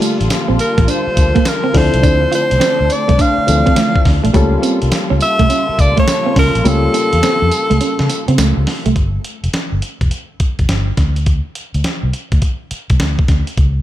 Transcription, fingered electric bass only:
0.21 0.28 A1 medium
0.50 0.57 A#1 medium
0.78 0.85 A1 medium
1.07 muted fingered electric bass stroke soft
1.17 1.31 D2 loud
1.75 1.89 D2 loud
1.94 2.01 C2 medium
2.04 2.25 D2 loud
2.52 2.59 C2 medium
2.81 2.88 D2 medium
3.09 3.16 C2 medium
3.38 muted fingered electric bass stroke soft
3.48 3.62 D2 loud
4.06 4.19 D2 medium
4.25 4.32 A#1 medium
4.34 4.56 C#2 loud
4.83 4.90 C2 medium
5.11 5.18 C#2 medium
5.40 5.47 C2 medium
5.69 muted fingered electric bass stroke soft
5.79 5.93 C#2 medium
6.36 6.50 C#2 medium
6.55 6.63 A#1 medium
6.65 6.87 C#2 loud
7.13 7.20 E2 loud
7.42 7.49 F2 medium
7.71 7.78 C#2 medium
8.00 8.07 C#3 medium
8.28 8.36 C#3 medium
8.38 8.52 C#2 medium
8.57 8.65 C#2 medium
8.86 8.93 C2 medium
8.96 9.17 G1 medium
9.44 9.51 F1 medium
9.53 muted fingered electric bass stroke soft
9.72 9.80 G1 medium
10.01 10.09 F1 medium
10.40 muted fingered electric bass stroke soft
10.59 10.67 G1 medium
10.69 10.90 G1 medium
10.98 11.40 D2 medium
11.75 11.82 D2 medium
12.03 12.11 C2 medium
12.32 12.39 D2 medium
12.71 muted fingered electric bass stroke soft
12.90 12.97 C2 medium
13.00 13.21 D2 medium
13.29 13.42 D2 medium
13.58 13.79 C#2 loud

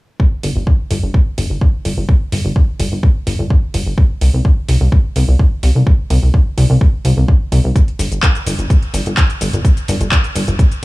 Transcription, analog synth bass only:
0.43 0.51 G1 medium
0.56 0.63 G1 medium
0.91 0.99 G1 medium
1.03 1.10 G1 medium
1.38 1.46 G1 medium
1.50 1.57 G1 medium
1.85 1.93 G1 medium
1.97 2.05 G1 medium
2.32 2.40 G1 medium
2.45 2.52 G1 medium
2.80 2.87 G1 medium
2.92 2.99 G1 medium
3.27 3.35 G1 medium
3.39 3.46 G1 medium
3.74 3.82 G1 medium
3.86 3.94 G1 medium
4.21 4.29 C2 medium
4.34 4.41 C2 medium
4.69 4.76 C2 medium
4.81 4.88 C2 medium
5.16 5.24 C2 medium
5.28 5.35 C2 medium
5.63 5.71 C2 medium
5.75 5.83 C2 medium
6.10 6.18 C2 medium
6.23 6.30 C2 medium
6.58 6.65 C2 medium
6.70 6.77 C2 medium
7.05 7.13 C2 medium
7.17 7.24 C2 medium
7.52 7.60 C2 medium
7.64 7.72 C2 medium
7.99 8.07 G1 medium
8.12 8.19 G1 medium
8.46 8.54 G1 loud
8.59 8.66 G1 medium
8.94 9.02 G1 medium
9.06 9.13 G1 medium
9.41 9.49 G1 medium
9.53 9.61 G1 medium
9.88 9.96 G1 medium
10.01 10.08 G1 medium
10.35 10.43 G1 medium
10.48 10.55 G1 medium

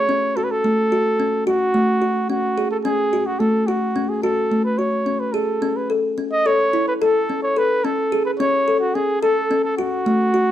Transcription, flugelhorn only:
0.00 0.38 C#5 loud
0.37 0.45 A4 medium
0.44 0.53 B4 medium
0.51 1.47 A4 medium
1.47 2.26 F#4 medium
2.30 2.68 F#4 medium
2.71 2.77 A4 medium
2.85 3.28 G#4 medium
3.26 3.41 F#4 medium
3.39 3.68 A4 medium
3.67 4.11 F#4 medium
4.09 4.22 G#4 medium
4.22 4.62 A4 medium
4.65 4.80 B4 medium
4.78 5.21 C#5 medium
5.20 5.35 B4 medium
5.34 5.78 A4 medium
5.76 5.90 B4 medium
6.32 6.48 D#5 loud
6.46 6.87 C#5 medium
6.88 6.94 B4 medium
7.02 7.40 A4 medium
7.43 7.60 C#5 medium
7.58 7.86 B4 medium
7.84 8.25 A4 medium
8.25 8.32 B4 medium
8.39 8.78 C#5 medium
8.80 8.96 F#4 medium
8.95 9.21 G#4 medium
9.22 9.61 A4 medium
9.64 9.77 A4 medium
9.77 10.52 F#4 medium

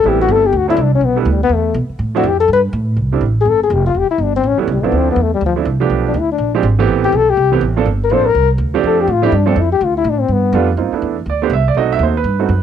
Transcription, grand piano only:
0.05 0.41 G3 medium
0.05 0.41 A3 medium
0.05 0.41 B3 medium
0.05 0.41 C4 medium
0.05 0.42 E4 medium
0.68 0.77 F#3 medium
0.68 0.77 A3 medium
0.68 0.77 C4 medium
0.68 0.77 D4 medium
0.68 0.78 E4 medium
1.16 1.25 G3 medium
1.16 1.26 A3 medium
1.16 1.26 B3 medium
1.16 1.26 D4 medium
1.16 1.26 E4 medium
2.15 2.23 F3 medium
2.15 2.24 A3 medium
2.15 2.24 C4 medium
2.15 2.24 D4 medium
2.15 2.24 E4 medium
3.12 3.21 G3 medium
3.12 3.21 A3 medium
3.12 3.21 C4 medium
3.12 3.21 D4 medium
3.12 3.22 E4 medium
4.58 4.67 G3 medium
4.58 4.67 A3 medium
4.58 4.67 B3 medium
4.58 4.68 C#4 medium
4.58 4.68 E4 medium
4.83 5.15 F3 medium
4.83 5.16 A3 medium
4.83 5.16 C4 medium
4.83 5.16 D4 medium
4.83 5.16 E4 medium
5.56 5.65 F3 medium
5.56 5.65 A3 medium
5.56 5.65 C4 medium
5.56 5.65 D4 medium
5.56 5.66 E4 medium
5.80 6.13 F3 medium
5.80 6.13 A3 medium
5.80 6.13 B3 medium
5.80 6.13 D4 medium
5.80 6.13 G4 medium
6.55 6.63 F3 medium
6.55 6.63 G#3 medium
6.55 6.63 C4 medium
6.55 6.63 D4 medium
6.55 6.64 G4 medium
6.79 7.11 E3 medium
6.79 7.11 A3 medium
6.79 7.11 B3 medium
6.79 7.11 C4 medium
6.79 7.11 G4 loud
7.52 7.60 E3 medium
7.52 7.60 A3 medium
7.52 7.61 B3 medium
7.52 7.61 C4 medium
7.52 7.61 G4 medium
7.76 7.85 F3 medium
7.76 7.85 A#3 medium
7.76 7.85 C4 medium
7.76 7.86 D4 medium
7.76 7.86 A4 medium
8.11 8.24 F3 medium
8.11 8.24 A#3 medium
8.11 8.24 C4 medium
8.11 8.24 D4 medium
8.11 8.25 A4 medium
8.74 9.06 F3 medium
8.74 9.06 A3 medium
8.74 9.06 C4 medium
8.74 9.06 D4 medium
8.74 9.06 G4 medium
9.22 9.31 F3 medium
9.22 9.31 A3 medium
9.22 9.31 C4 medium
9.22 9.31 D4 medium
9.22 9.32 G4 medium
9.46 9.55 F3 medium
9.46 9.55 A3 medium
9.46 9.55 C4 medium
9.46 9.56 D4 medium
9.46 9.56 A4 medium
10.54 10.67 G3 medium
10.54 10.67 A3 medium
10.54 10.67 B3 medium
10.54 10.68 D4 medium
10.54 10.68 F4 medium
10.77 10.91 A#3 medium
10.77 10.91 C4 medium
10.77 10.92 D#4 medium
10.77 10.92 F4 medium
10.93 11.14 A3 medium
10.93 11.15 B3 medium
10.93 11.15 D4 medium
10.93 11.15 E4 medium
11.30 11.43 D5 medium
11.42 11.51 A3 medium
11.42 11.51 B3 medium
11.42 11.51 D4 medium
11.42 11.52 G4 medium
11.42 11.52 C5 medium
11.53 11.67 E5 loud
11.68 11.77 D5 medium
11.77 12.13 A3 medium
11.77 12.13 C4 medium
11.77 12.13 D#4 medium
11.77 12.13 F#4 medium
11.77 11.91 D#5 medium
11.92 12.01 E5 loud
12.03 12.16 C5 medium
12.17 12.63 B4 medium
12.39 12.48 A3 medium
12.39 12.49 C4 medium
12.39 12.49 D#4 medium
12.39 12.49 F#4 medium

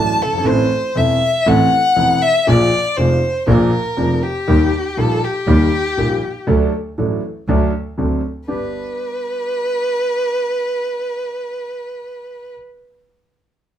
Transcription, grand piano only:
0.00 0.16 A1 medium
0.00 0.16 A2 medium
0.00 0.16 F#3 soft
0.00 0.16 A3 soft
0.00 0.16 D4 soft
0.00 0.16 A4 soft
0.25 0.33 F#1 soft
0.33 0.40 G1 medium
0.38 0.45 G#1 medium
0.44 0.67 A1 medium
0.44 0.67 A2 medium
0.44 0.66 E3 medium
0.44 0.67 A3 medium
0.44 0.66 C4 medium
0.44 0.67 A4 medium
0.95 1.18 E1 medium
0.95 1.18 E2 medium
0.95 1.17 E3 soft
0.95 1.18 A3 soft
0.95 1.18 C4 soft
0.95 1.18 A4 medium
1.46 1.68 A1 medium
1.46 1.68 A2 medium
1.46 1.68 E3 medium
1.46 1.68 A3 medium
1.46 1.68 C4 medium
1.46 1.68 A4 medium
1.96 2.18 E1 medium
1.96 2.18 E2 medium
1.96 2.18 E3 soft
1.96 2.18 A3 soft
1.96 2.18 C4 soft
1.96 2.19 A4 medium
2.47 2.69 A#1 medium
2.47 2.69 A#2 medium
2.47 2.68 F3 medium
2.47 2.68 A#3 medium
2.47 2.69 D4 medium
2.47 2.69 G#4 medium
2.97 3.19 F1 medium
2.97 3.19 F2 medium
2.97 3.19 F3 medium
2.97 3.19 A#3 soft
2.97 3.19 D4 soft
2.97 3.19 G#4 medium
3.47 3.69 A#1 medium
3.47 3.69 A#2 loud
3.47 3.69 F3 medium
3.47 3.69 A#3 medium
3.47 3.69 D4 medium
3.47 3.69 G#4 medium
3.97 4.19 F1 medium
3.97 4.19 F2 medium
3.97 4.19 F3 medium
3.97 4.19 A#3 soft
3.97 4.19 D4 soft
3.97 4.19 G#4 medium
4.47 4.69 D#2 medium
4.47 4.69 D#3 medium
4.47 4.69 G3 medium
4.47 4.69 A#3 medium
4.47 4.69 G4 medium
4.97 5.19 A#1 medium
4.97 5.19 A#2 medium
4.97 5.19 D#3 soft
4.97 5.19 G3 soft
4.97 5.19 A#3 soft
4.97 5.19 G4 medium
5.47 5.69 D#2 medium
5.47 5.69 D#3 medium
5.47 5.69 G3 medium
5.47 5.69 A#3 medium
5.47 5.69 G4 medium
5.97 6.19 A#1 medium
5.97 6.19 A#2 medium
5.97 6.19 D#3 soft
5.97 6.19 G3 soft
5.97 6.19 A#3 soft
5.97 6.19 G4 medium
6.47 6.69 D2 medium
6.47 6.69 D3 medium
6.47 6.69 F#3 medium
6.47 6.69 A3 medium
6.47 6.69 D4 medium
6.47 6.69 A4 medium
6.98 7.20 A1 medium
6.98 7.19 A2 medium
6.98 7.19 F#3 soft
6.98 7.19 A3 soft
6.98 7.20 D4 soft
6.98 7.20 A4 soft
7.48 7.70 D2 medium
7.48 7.70 D3 medium
7.48 7.70 F#3 medium
7.48 7.70 A3 medium
7.48 7.70 D4 medium
7.48 7.70 A4 medium
7.97 8.20 D2 medium
7.97 8.20 D3 medium
7.97 8.20 F#3 soft
7.97 8.20 C4 soft
7.97 8.20 D4 soft
7.97 8.20 A4 medium
8.48 12.53 G2 soft
8.48 12.53 B3 soft
8.48 12.53 D4 soft
8.48 12.53 G4 medium

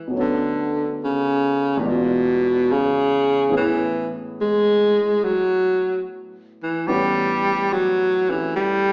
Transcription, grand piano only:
0.00 0.12 F#2 soft
0.00 0.12 E3 soft
0.00 0.11 F#3 soft
0.00 0.12 G#3 soft
0.00 0.13 C#4 soft
0.00 0.13 E4 soft
0.00 0.14 F#4 soft
0.00 0.13 G#4 soft
0.08 1.78 B2 soft
0.08 1.80 F#3 soft
0.14 1.81 A3 soft
0.14 1.83 C#4 soft
0.19 1.84 B3 soft
1.77 3.47 E2 soft
1.77 3.48 E3 soft
1.83 3.50 G#3 soft
1.83 3.51 D5 soft
1.88 3.52 F4 medium
3.49 6.86 A2 soft
3.49 6.87 E3 soft
3.49 6.87 B3 soft
3.49 6.88 C#4 soft
3.53 6.89 G#4 soft
6.87 8.93 A2 soft
6.87 8.93 E3 soft
6.87 8.93 B3 soft
6.87 8.27 C#4 soft
6.87 8.93 F#4 medium
8.28 8.93 A3 soft
8.28 8.93 C#4 soft
8.28 8.93 E4 soft
8.28 8.93 G4 soft

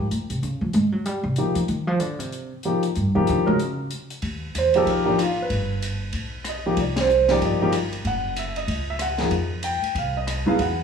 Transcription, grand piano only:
1.38 1.55 F3 medium
1.38 1.55 A#3 soft
1.38 1.55 D#4 soft
1.38 1.55 G4 medium
2.65 2.82 F3 medium
2.65 2.83 A#3 soft
2.65 2.82 D#4 soft
2.65 2.82 G4 medium
3.15 3.45 F3 medium
3.15 3.45 A#3 medium
3.15 3.45 D#4 medium
3.15 3.45 G4 medium
3.46 3.58 G#3 medium
3.46 3.58 C#4 medium
3.46 3.58 F#4 medium
3.46 3.58 A#4 medium
4.58 4.75 C5 medium
4.75 5.04 F3 medium
4.75 5.04 A#3 medium
4.75 5.04 D#4 medium
4.75 5.04 G4 medium
4.75 4.88 A4 medium
4.90 5.07 A#4 medium
5.05 5.17 F3 medium
5.05 5.17 A#3 medium
5.05 5.19 D4 medium
5.05 5.17 D#4 medium
5.05 5.17 G4 medium
5.22 5.39 F4 medium
5.42 5.70 B4 medium
6.49 6.77 D#5 medium
6.66 6.77 F3 medium
6.66 6.77 A#3 medium
6.66 6.77 D#4 medium
6.66 6.77 G4 medium
6.81 6.98 D5 medium
7.01 7.29 C5 medium
7.29 7.59 F3 medium
7.29 7.59 A#3 medium
7.29 7.60 D#4 medium
7.29 7.60 G4 medium
7.29 7.42 D5 medium
7.45 7.73 D#5 medium
7.62 7.73 F3 medium
7.62 7.73 A#3 medium
7.62 7.73 D#4 medium
7.62 7.73 G4 medium
8.07 8.36 F#5 medium
8.39 8.57 E5 medium
8.57 8.86 D#5 medium
8.90 9.01 E5 medium
9.02 9.31 F#5 medium
9.19 9.31 F3 medium
9.19 9.31 A#3 medium
9.19 9.31 D#4 soft
9.19 9.31 G#4 medium
9.64 9.94 G5 medium
9.98 10.16 F5 medium
10.17 10.46 D#5 medium
10.46 10.58 F#3 medium
10.46 10.58 B3 medium
10.46 10.58 E4 medium
10.46 10.58 G#4 medium
10.46 10.60 F5 medium
10.62 10.83 F#5 medium

